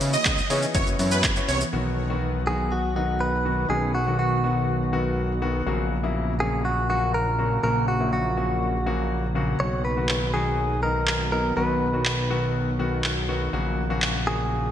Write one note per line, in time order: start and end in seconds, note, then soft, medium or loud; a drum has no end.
0.00 0.17 C#3 loud
0.00 0.74 E3 medium
0.00 0.34 B3 medium
0.00 0.74 B3 medium
0.00 0.74 C#4 medium
0.00 0.34 D#4 medium
0.00 0.34 E4 medium
0.00 0.34 G#4 medium
0.00 0.34 C#5 medium
0.00 open hi-hat medium
0.00 shaker medium
0.13 0.48 D#5 medium
0.13 shaker medium
0.25 0.42 C#2 loud
0.25 kick loud
0.25 clap loud
0.25 clap medium
0.25 closed hi-hat medium
0.25 shaker medium
0.38 shaker medium
0.50 0.66 C#3 loud
0.50 0.73 B3 medium
0.50 0.75 D#4 medium
0.50 0.73 E4 medium
0.50 0.75 G#4 medium
0.50 0.73 C#5 medium
0.50 open hi-hat medium
0.50 shaker medium
0.63 shaker medium
0.74 0.83 F#1 loud
0.74 1.72 E3 medium
0.74 0.94 B3 medium
0.74 1.72 B3 medium
0.74 0.94 C#4 medium
0.74 0.94 E4 medium
0.74 0.94 F#4 medium
0.74 1.72 F#4 medium
0.74 0.85 C#5 medium
0.74 0.95 C#5 medium
0.74 kick loud
0.74 closed hi-hat medium
0.74 shaker medium
0.87 0.95 F#1 loud
0.87 shaker soft
0.99 1.25 F#2 loud
0.99 1.28 B3 medium
0.99 1.28 C#4 medium
0.99 1.28 E4 medium
0.99 1.28 F#4 medium
0.99 1.28 C#5 medium
0.99 open hi-hat medium
0.99 shaker medium
1.11 1.22 B4 medium
1.11 shaker medium
1.24 1.40 F#1 loud
1.24 kick loud
1.24 clap loud
1.24 clap medium
1.24 closed hi-hat medium
1.24 shaker medium
1.36 1.65 B3 medium
1.36 1.65 C#4 medium
1.36 1.65 E4 medium
1.36 1.65 F#4 medium
1.36 1.65 C#5 medium
1.36 shaker medium
1.48 1.64 C2 loud
1.48 1.59 C#5 medium
1.48 open hi-hat medium
1.48 shaker soft
1.61 shaker medium
1.73 3.66 B1 medium
1.73 2.02 D#3 medium
1.73 5.63 D#3 medium
1.73 2.02 F#3 medium
1.73 5.63 B3 medium
1.73 2.02 B3 medium
1.73 13.49 F#4 medium
1.73 2.02 F#4 medium
2.10 2.39 D#3 medium
2.10 2.39 F#3 medium
2.10 2.39 B3 medium
2.10 2.39 F#4 medium
2.47 2.85 D#3 medium
2.47 2.85 F#3 medium
2.47 2.85 B3 medium
2.47 2.85 F#4 medium
2.47 2.72 G#4 medium
2.72 2.94 F#4 medium
2.96 3.34 D#3 medium
2.96 3.34 F#3 medium
2.96 3.34 B3 medium
2.96 3.35 D#4 medium
2.96 3.21 F#4 medium
3.21 3.69 B4 medium
3.45 3.64 D#3 medium
3.45 3.64 F#3 medium
3.45 3.64 B3 medium
3.45 3.65 F#4 medium
3.70 5.62 B1 medium
3.70 3.99 D#3 medium
3.70 3.99 F#3 medium
3.70 3.99 B3 medium
3.70 3.99 C#4 medium
3.70 3.94 G#4 medium
3.95 4.18 F#4 medium
4.06 4.35 D#3 medium
4.06 4.35 F#3 medium
4.06 4.36 B3 medium
4.06 4.36 F#4 medium
4.19 5.38 F#4 medium
4.43 4.82 D#3 medium
4.43 4.82 F#3 medium
4.43 4.82 B3 medium
4.43 4.82 F#4 medium
4.92 5.31 D#3 medium
4.92 5.31 F#3 medium
4.92 5.31 B3 medium
4.92 5.31 F#4 medium
5.42 5.61 D#3 medium
5.42 5.61 F#3 medium
5.42 5.61 B3 medium
5.42 5.61 F#4 medium
5.66 7.59 A#1 medium
5.66 5.95 C#3 medium
5.66 9.56 C#3 medium
5.66 5.95 F#3 medium
5.66 9.56 A#3 medium
5.66 5.95 A#3 medium
5.66 5.96 F#4 medium
6.03 6.32 C#3 medium
6.03 6.32 F#3 medium
6.03 6.32 A#3 medium
6.03 6.32 E4 medium
6.40 6.79 C#3 medium
6.40 6.79 F#3 medium
6.40 6.79 A#3 medium
6.40 6.79 C#4 medium
6.40 6.63 G#4 medium
6.65 6.89 F#4 medium
6.89 7.28 C#3 medium
6.89 7.28 F#3 medium
6.89 7.28 A#3 medium
6.89 7.28 F#4 medium
6.89 7.14 F#4 medium
7.14 7.62 A#4 medium
7.38 7.58 C#3 medium
7.38 7.58 F#3 medium
7.38 7.58 A#3 medium
7.38 7.58 F#4 medium
7.63 9.56 A#1 medium
7.63 7.92 C#3 medium
7.63 7.92 F#3 medium
7.63 7.92 A#3 medium
7.63 7.92 F#4 medium
7.63 7.86 A#4 loud
7.88 8.11 F#4 medium
8.00 8.29 C#3 medium
8.00 8.29 F#3 medium
8.00 8.29 A#3 medium
8.00 8.29 E4 medium
8.13 9.32 F#4 medium
8.37 8.75 C#3 medium
8.37 8.75 F#3 medium
8.37 8.75 A#3 medium
8.37 8.76 F#4 medium
8.86 9.25 C#3 medium
8.86 9.25 F#3 medium
8.86 9.25 A#3 medium
8.86 9.25 F#4 medium
9.35 9.54 C#3 medium
9.35 9.55 F#3 medium
9.35 9.55 A#3 medium
9.35 9.55 F#4 medium
9.60 11.53 B1 medium
9.60 13.49 D#3 medium
9.60 9.89 D#3 medium
9.60 9.89 F#3 medium
9.60 13.49 B3 medium
9.60 9.89 B3 medium
9.60 9.89 F#4 medium
9.60 9.84 C#5 loud
9.85 10.33 B4 loud
9.97 10.26 D#3 medium
9.97 10.26 F#3 medium
9.97 10.26 B3 medium
9.97 10.26 F#4 medium
10.09 clap loud
10.33 10.72 D#3 medium
10.33 10.72 F#3 medium
10.33 10.72 B3 medium
10.33 10.72 F#4 medium
10.33 10.82 G#4 medium
10.83 11.21 D#3 medium
10.83 11.21 F#3 medium
10.83 11.21 B3 medium
10.83 11.21 D#4 medium
10.83 11.31 A#4 medium
11.07 clap loud
11.32 11.51 D#3 medium
11.32 11.51 F#3 medium
11.32 11.51 B3 medium
11.32 11.51 D#4 medium
11.32 11.56 A#4 medium
11.56 13.49 B1 medium
11.56 11.85 D#3 medium
11.56 11.85 F#3 medium
11.56 11.85 B3 medium
11.56 11.86 F#4 medium
11.56 12.51 B4 medium
11.93 12.22 D#3 medium
11.93 12.22 F#3 medium
11.93 12.22 B3 medium
11.93 12.22 F#4 medium
12.05 clap loud
12.30 12.69 D#3 medium
12.30 12.69 F#3 medium
12.30 12.69 B3 medium
12.30 12.69 F#4 medium
12.79 13.18 D#3 medium
12.79 13.18 F#3 medium
12.79 13.18 B3 medium
12.79 13.18 F#4 medium
13.04 clap loud
13.28 13.48 D#3 medium
13.28 13.48 F#3 medium
13.28 13.48 B3 medium
13.28 13.48 F#4 loud
13.53 14.71 A#1 medium
13.53 13.82 C#3 medium
13.53 14.71 C#3 medium
13.53 13.82 F#3 medium
13.53 13.82 A#3 medium
13.53 14.71 A#3 medium
13.53 13.82 F#4 medium
13.53 14.71 F#4 medium
13.90 14.19 C#3 medium
13.90 14.19 F#3 medium
13.90 14.19 A#3 medium
13.90 14.19 F#4 loud
14.02 clap loud
14.27 14.65 C#3 medium
14.27 14.66 F#3 medium
14.27 14.66 A#3 medium
14.27 14.66 F#4 medium
14.27 14.71 G#4 medium